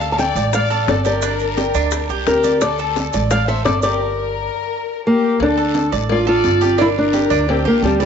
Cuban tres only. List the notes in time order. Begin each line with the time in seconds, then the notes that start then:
0.01 A4
0.36 D5
0.70 A4
1.05 G4
1.22 D4
1.57 G4
1.75 D4
2.10 G4
2.44 D5
2.79 A4
3.14 D5
3.49 A4
3.84 G4
5.58 A4
5.92 D5
6.27 A4
6.61 G4
6.78 D4
7.13 G4
7.30 D4
7.65 G4
8.00 D5